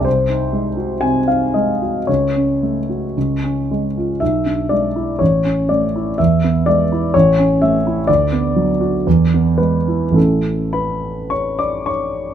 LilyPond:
<<
  \new Staff \with { instrumentName = "Grand piano" } { \time 2/4 \key cis \phrygian \tempo 4 = 60 bis'4 gis''16 eis''16 dis''8 | cis''4. r8 | \key a \major e''8 d''8 cis''8 d''8 | e''8 d''8 cis''8 e''8 |
d''4. b'8 | a'8 <b' b''>8 <cis'' cis'''>16 <d'' d'''>16 <cis'' cis'''>8 | }
  \new Staff \with { instrumentName = "Grand piano" } { \time 2/4 \key cis \phrygian bis,,16 dis'16 gis16 fis'16 bis,16 dis'16 gis16 fis'16 | cis,16 cis'16 a16 fis'16 cis,16 cis'16 gis16 eis'16 | \key a \major b,,16 d'16 gis16 e'16 a,,16 cis'16 a16 e'16 | e,16 b16 gis16 e'16 a,,16 cis'16 a16 e'16 |
d,16 b16 fis16 fis'16 e,16 b16 gis16 e'16 | <a,, a cis' e'>2 | }
>>